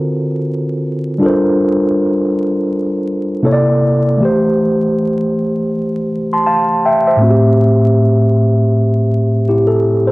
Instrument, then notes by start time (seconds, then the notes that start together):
tine electric piano
Already playing: D3 C4 F4 F#4 A4 A#4 C5
1.19 G3 D4 F4
1.23 A4 A#4 C5
3.42 C3 A#3 E4 A4 C#5
3.52 D5
4.18 E3 A3
4.23 G4 C5
6.33 A5 C6
6.46 F5 A5
6.85 E5 G5
7.07 C5 E5
7.16 A2 A3
7.21 C4 F#4
7.30 G4
9.49 E4 G4
9.67 A4
10.07 A4 C5